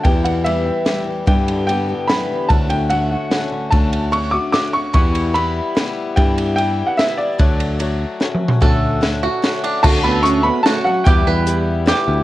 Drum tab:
CC |------------------|------------------|------------------|------------------|
RD |x--x--x-----x-----|x--x--x-----x-----|x--x--x-----x-----|x--x--x-----x-----|
HH |------------------|------------------|------------------|------------------|
SD |------------o-----|------------o-----|------------o-----|------------o-----|
T2 |------------------|------------------|------------------|------------------|
FT |------------------|------------------|------------------|------------------|
BD |o-----------------|o-----------------|o-----------------|o-----------------|

CC |------------------|------------------|------------------|------------------|
RD |x--x--x-----x-----|x--x--x-----x-----|x--x--x-----------|x-----x-----x--x--|
HH |------------------|------------------|------------------|------------------|
SD |------------o-----|------------o-----|------------o-----|------o-----o-----|
T2 |------------------|------------------|--------------o---|------------------|
FT |------------------|------------------|----------------o-|------------------|
BD |o-----------------|o-----------------|o-----------------|o-----------------|

CC |x-----------------|------------------|
RD |------------------|------------------|
HH |------x-----x-----|x-----x-----x-----|
SD |------------o-----|------------o-----|
T2 |------------------|------------------|
FT |------------------|------------------|
BD |o-----------------|o-----------------|